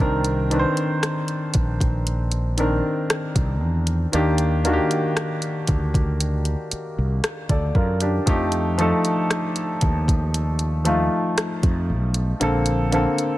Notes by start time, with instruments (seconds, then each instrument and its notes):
0.00 fretless electric bass C2, grand piano D#3 C4 D4 A#4
0.24 closed hi-hat
0.50 grand piano D#3 C4 D4 B4, closed hi-hat
0.59 grand piano C5
0.77 closed hi-hat
1.03 cross-stick, closed hi-hat
1.28 closed hi-hat
1.54 fretless electric bass A#1, kick, closed hi-hat
1.80 kick, closed hi-hat
2.07 closed hi-hat
2.32 closed hi-hat
2.57 grand piano D#3 C4 D4 A#4, closed hi-hat
3.10 cross-stick, closed hi-hat
3.36 fretless electric bass C2, kick, closed hi-hat
3.62 fretless electric bass E2
3.87 closed hi-hat
4.12 fretless electric bass D#2, grand piano D#3 A#3 D4 G4, closed hi-hat
4.38 closed hi-hat
4.64 grand piano D#3 A#3 D4 F#4, closed hi-hat
4.73 grand piano G4
4.91 closed hi-hat
5.17 cross-stick, closed hi-hat
5.42 closed hi-hat
5.67 fretless electric bass D2, kick, closed hi-hat
5.94 kick, closed hi-hat
6.20 closed hi-hat
6.45 closed hi-hat
6.71 muted fretless electric bass stroke, closed hi-hat
6.98 fretless electric bass C2
7.24 cross-stick, closed hi-hat
7.49 fretless electric bass D2, grand piano A4 D5, kick, closed hi-hat
7.75 fretless electric bass F#2, grand piano F4 A#4, kick
8.00 grand piano D4 G4, closed hi-hat
8.26 fretless electric bass F2, grand piano F3 A3 D#4 G4, kick, closed hi-hat
8.52 closed hi-hat
8.78 grand piano F3 A3 D#4 A4, closed hi-hat
9.05 closed hi-hat
9.31 cross-stick, closed hi-hat
9.56 closed hi-hat
9.81 fretless electric bass D#2, kick, closed hi-hat
10.08 kick, closed hi-hat
10.34 closed hi-hat
10.59 closed hi-hat
10.85 grand piano F3 A3 D#4 F4, closed hi-hat
11.38 cross-stick, closed hi-hat
11.63 fretless electric bass F2, kick, closed hi-hat
11.90 fretless electric bass B1
12.14 closed hi-hat
12.40 fretless electric bass A#1, grand piano D3 A#3 C4 A4, closed hi-hat
12.66 closed hi-hat
12.92 grand piano D3 A#3 C4 A4, closed hi-hat
13.18 closed hi-hat